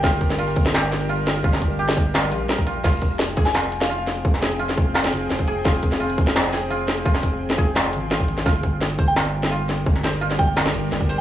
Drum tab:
CC |----------------|----------------|x---------------|----------------|
HH |--x--xx---x---x-|--x--xx---x---x-|--x--xx---x---x-|--x--xx---x---x-|
SD |o--o---oo-o---o-|-o---o--o---o---|o---o--oo--o--o-|-oo--o--oo--o---|
BD |o-o---o---------|o-o---o------o--|o-o---o---------|o-----o------o--|

CC |----------------|----------------|----------------|----------------|
HH |--x--xx---x---x-|--x--xx---x---x-|--x--xx-------x-|--x--xx---x---x-|
SD |o--o---oo-o---o-|-o---o--o---o--o|o---o---o--o--o-|-oo--o--oo--o---|
BD |o-o---o---------|o-o---o------o--|o-o---o---------|o-----o------o--|